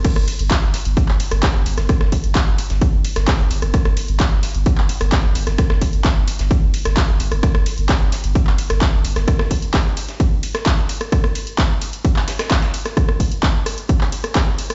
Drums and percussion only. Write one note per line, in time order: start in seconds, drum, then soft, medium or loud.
0.05 kick loud
0.05 cross-stick medium
0.05 closed hi-hat medium
0.05 ride medium
0.05 crash medium
0.16 cross-stick medium
0.16 closed hi-hat soft
0.28 closed hi-hat medium
0.28 open hi-hat loud
0.28 ride medium
0.39 closed hi-hat medium
0.51 kick loud
0.51 snare loud
0.51 clap loud
0.51 closed hi-hat medium
0.51 ride medium
0.74 snare medium
0.74 closed hi-hat medium
0.74 open hi-hat loud
0.74 ride medium
0.85 closed hi-hat medium
0.97 kick loud
0.97 closed hi-hat medium
0.97 ride medium
1.08 clap medium
1.20 closed hi-hat medium
1.20 open hi-hat loud
1.20 ride medium
1.31 cross-stick medium
1.31 closed hi-hat medium
1.31 closed hi-hat soft
1.43 kick loud
1.43 snare loud
1.43 clap loud
1.43 closed hi-hat medium
1.43 ride medium
1.66 closed hi-hat medium
1.66 open hi-hat loud
1.66 ride medium
1.78 cross-stick medium
1.78 snare soft
1.78 closed hi-hat medium
1.89 kick loud
1.89 cross-stick medium
1.89 closed hi-hat medium
1.89 ride medium
2.01 cross-stick medium
2.01 snare medium
2.12 kick medium
2.12 closed hi-hat medium
2.12 open hi-hat loud
2.12 ride medium
2.24 closed hi-hat medium
2.35 kick loud
2.35 snare loud
2.35 clap loud
2.35 closed hi-hat medium
2.35 ride medium
2.58 closed hi-hat medium
2.58 open hi-hat loud
2.58 ride medium
2.70 snare medium
2.70 closed hi-hat medium
2.81 kick loud
2.81 closed hi-hat medium
2.81 ride medium
3.05 closed hi-hat medium
3.05 open hi-hat loud
3.05 ride medium
3.16 cross-stick medium
3.16 snare soft
3.16 closed hi-hat medium
3.28 kick loud
3.28 snare loud
3.28 clap loud
3.28 closed hi-hat medium
3.28 ride medium
3.39 closed hi-hat soft
3.51 closed hi-hat medium
3.51 open hi-hat loud
3.51 ride medium
3.62 cross-stick medium
3.62 closed hi-hat medium
3.74 kick loud
3.74 cross-stick medium
3.74 closed hi-hat medium
3.74 ride medium
3.85 cross-stick medium
3.85 closed hi-hat soft
3.97 closed hi-hat medium
3.97 open hi-hat loud
3.97 ride medium
4.08 closed hi-hat medium
4.20 kick loud
4.20 snare loud
4.20 clap loud
4.20 closed hi-hat medium
4.20 ride medium
4.43 snare medium
4.43 closed hi-hat medium
4.43 open hi-hat loud
4.43 ride medium
4.55 closed hi-hat medium
4.66 kick loud
4.66 closed hi-hat medium
4.66 ride medium
4.78 clap medium
4.89 closed hi-hat medium
4.89 open hi-hat loud
4.89 ride medium
5.01 cross-stick medium
5.01 closed hi-hat medium
5.01 closed hi-hat soft
5.12 kick loud
5.12 snare loud
5.12 clap loud
5.12 closed hi-hat medium
5.12 ride medium
5.35 closed hi-hat medium
5.35 open hi-hat loud
5.35 ride medium
5.47 cross-stick medium
5.47 snare soft
5.47 closed hi-hat medium
5.58 kick loud
5.58 cross-stick loud
5.58 closed hi-hat medium
5.58 ride medium
5.70 cross-stick medium
5.70 snare medium
5.81 kick medium
5.81 closed hi-hat medium
5.81 open hi-hat loud
5.81 ride medium
5.93 closed hi-hat medium
6.05 kick loud
6.05 snare loud
6.05 clap loud
6.05 closed hi-hat medium
6.05 ride medium
6.28 closed hi-hat medium
6.28 open hi-hat loud
6.28 ride medium
6.39 snare medium
6.39 closed hi-hat medium
6.51 kick loud
6.51 closed hi-hat medium
6.51 closed hi-hat loud
6.51 ride medium
6.74 closed hi-hat medium
6.74 open hi-hat loud
6.74 ride medium
6.85 cross-stick loud
6.85 snare soft
6.85 closed hi-hat medium
6.97 kick loud
6.97 snare loud
6.97 clap loud
6.97 closed hi-hat medium
6.97 ride medium
7.09 closed hi-hat soft
7.20 closed hi-hat medium
7.20 open hi-hat loud
7.20 ride medium
7.32 cross-stick medium
7.32 closed hi-hat medium
7.43 kick loud
7.43 cross-stick loud
7.43 closed hi-hat medium
7.43 ride medium
7.55 cross-stick loud
7.55 closed hi-hat soft
7.66 closed hi-hat medium
7.66 open hi-hat loud
7.66 ride medium
7.78 closed hi-hat medium
7.89 kick loud
7.89 snare loud
7.89 clap loud
7.89 closed hi-hat medium
7.89 ride medium
8.12 snare medium
8.12 closed hi-hat medium
8.12 open hi-hat loud
8.12 ride medium
8.24 closed hi-hat medium
8.35 kick loud
8.35 closed hi-hat medium
8.35 ride medium
8.47 clap medium
8.58 closed hi-hat medium
8.58 open hi-hat loud
8.58 ride medium
8.70 cross-stick loud
8.70 closed hi-hat medium
8.70 closed hi-hat soft
8.81 kick loud
8.81 snare loud
8.81 clap loud
8.81 closed hi-hat medium
8.81 ride medium
9.05 closed hi-hat medium
9.05 open hi-hat loud
9.05 ride medium
9.16 cross-stick medium
9.16 snare soft
9.16 closed hi-hat medium
9.28 kick loud
9.28 cross-stick loud
9.28 closed hi-hat medium
9.28 ride medium
9.39 cross-stick loud
9.39 snare medium
9.51 kick medium
9.51 closed hi-hat medium
9.51 open hi-hat loud
9.51 ride medium
9.62 closed hi-hat medium
9.74 kick loud
9.74 snare loud
9.74 clap loud
9.74 closed hi-hat medium
9.74 ride medium
9.97 closed hi-hat medium
9.97 open hi-hat loud
9.97 ride medium
10.09 snare medium
10.09 closed hi-hat medium
10.20 kick loud
10.20 closed hi-hat medium
10.20 ride medium
10.43 closed hi-hat medium
10.43 open hi-hat loud
10.43 ride medium
10.55 cross-stick loud
10.55 snare soft
10.55 closed hi-hat medium
10.66 kick loud
10.66 snare loud
10.66 clap loud
10.66 closed hi-hat medium
10.66 ride medium
10.78 closed hi-hat soft
10.89 closed hi-hat medium
10.89 open hi-hat loud
10.89 ride medium
11.01 cross-stick medium
11.01 closed hi-hat medium
11.12 kick loud
11.12 cross-stick loud
11.12 closed hi-hat medium
11.12 ride medium
11.24 cross-stick medium
11.24 closed hi-hat soft
11.35 closed hi-hat medium
11.35 open hi-hat loud
11.35 ride medium
11.47 closed hi-hat medium
11.58 kick loud
11.58 snare loud
11.58 clap loud
11.58 closed hi-hat medium
11.58 ride medium
11.81 closed hi-hat medium
11.81 open hi-hat loud
11.81 ride medium
11.93 closed hi-hat medium
12.05 kick loud
12.05 closed hi-hat medium
12.05 ride medium
12.16 clap medium
12.28 snare loud
12.28 closed hi-hat medium
12.28 open hi-hat loud
12.28 ride medium
12.39 cross-stick loud
12.39 snare loud
12.39 closed hi-hat medium
12.51 kick loud
12.51 snare loud
12.51 clap loud
12.51 closed hi-hat medium
12.51 ride medium
12.62 snare loud
12.62 closed hi-hat medium
12.74 closed hi-hat medium
12.74 open hi-hat loud
12.74 ride medium
12.85 cross-stick medium
12.85 snare soft
12.85 closed hi-hat medium
12.97 kick loud
12.97 cross-stick medium
12.97 closed hi-hat medium
12.97 ride medium
13.09 cross-stick medium
13.20 kick medium
13.20 open hi-hat loud
13.20 ride medium
13.32 closed hi-hat medium
13.43 kick loud
13.43 clap loud
13.43 closed hi-hat medium
13.43 ride medium
13.66 cross-stick medium
13.66 open hi-hat loud
13.66 ride medium
13.78 closed hi-hat medium
13.89 kick loud
13.89 closed hi-hat medium
13.89 ride medium
14.01 clap medium
14.12 open hi-hat loud
14.12 ride medium
14.24 cross-stick medium
14.24 closed hi-hat medium
14.35 kick loud
14.35 clap loud
14.35 closed hi-hat medium
14.35 ride medium
14.58 open hi-hat loud
14.58 ride medium
14.70 cross-stick medium
14.70 closed hi-hat medium